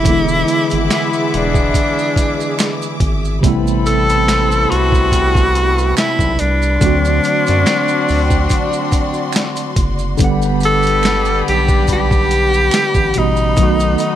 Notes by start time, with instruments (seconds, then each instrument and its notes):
Already playing: tenor saxophone E4, string section E5 D6
0.03 analog synth bass E1, tine electric piano D3 E3 G#3, horn section G#3 B3 E4, string section G#4, kick, closed hi-hat, maracas
0.09 tine electric piano B3 E4
0.29 maracas
0.48 closed hi-hat, maracas
0.70 analog synth bass G#1, closed hi-hat, maracas
0.90 finger snap, snare, closed hi-hat, maracas
0.95 tenor saxophone E4
1.13 maracas
1.34 analog synth bass E1, tenor saxophone D4, closed hi-hat
1.54 kick, maracas
1.74 kick, closed hi-hat, maracas
1.99 maracas
2.16 kick, closed hi-hat, maracas
2.40 maracas
2.59 finger snap, snare, closed hi-hat, maracas
2.82 maracas
3.00 analog synth bass G#1, kick, closed hi-hat
3.25 maracas
3.41 analog synth bass A1, tine electric piano C3 G3 A3, string section G3 B4 B5, horn section C4 E4 A4, kick, closed hi-hat, maracas
3.46 tine electric piano B3 E4
3.67 maracas
3.86 tenor saxophone A4, closed hi-hat, maracas
4.09 closed hi-hat, maracas
4.28 finger snap, snare, closed hi-hat, maracas
4.51 maracas
4.70 analog synth bass C2, tenor saxophone F#4, closed hi-hat
4.92 kick, maracas
5.12 kick, closed hi-hat, maracas
5.35 kick, maracas
5.55 closed hi-hat, maracas
5.78 maracas
5.97 tenor saxophone E4, finger snap, snare, closed hi-hat, maracas
6.19 analog synth bass B1, kick, maracas
6.39 analog synth bass C2, tenor saxophone D4, closed hi-hat
6.62 maracas
6.79 analog synth bass D2, tine electric piano D3 F#3 A3, horn section C4 D4 F#4, string section F#4 D5 C6, kick, closed hi-hat, maracas
6.85 tine electric piano C4 F#4
7.05 maracas
7.24 closed hi-hat, maracas
7.46 analog synth bass F#2, closed hi-hat, maracas
7.66 finger snap, snare, closed hi-hat, maracas
7.88 maracas
8.08 analog synth bass D2, open hi-hat, maracas
8.30 kick, maracas
8.49 kick, closed hi-hat, maracas
8.73 maracas
8.92 kick, closed hi-hat, maracas
9.14 maracas
9.33 finger snap, snare, closed hi-hat, maracas
9.56 closed hi-hat, maracas
9.76 analog synth bass F#1, kick, closed hi-hat, maracas
9.99 maracas
10.17 analog synth bass G1, tine electric piano D3 G3, string section G3 F#5 B5, horn section B3 D4 G4, kick, closed hi-hat, maracas
10.23 tine electric piano B3 F#5
10.42 maracas
10.60 closed hi-hat, maracas
10.65 tenor saxophone A4
10.83 maracas
10.87 closed hi-hat
11.03 finger snap, snare, closed hi-hat, maracas
11.25 maracas
11.48 analog synth bass B1, tenor saxophone G4, closed hi-hat
11.68 kick, maracas
11.87 kick, closed hi-hat, maracas
11.93 tenor saxophone G4
12.11 kick, maracas
12.31 closed hi-hat, maracas
12.53 maracas
12.71 finger snap, snare, closed hi-hat, maracas
12.94 analog synth bass A1, kick, maracas
13.14 analog synth bass A1, tine electric piano B2 G3 B3 F#4, closed hi-hat
13.18 tenor saxophone D#4, tine electric piano G4
13.36 maracas
13.56 analog synth bass B1, tine electric piano D#3 F#3 A3, horn section B3 D#4 F#4, string section A4 D#5, kick, closed hi-hat, maracas
13.61 tine electric piano B3 F#4
13.80 maracas
13.98 closed hi-hat, maracas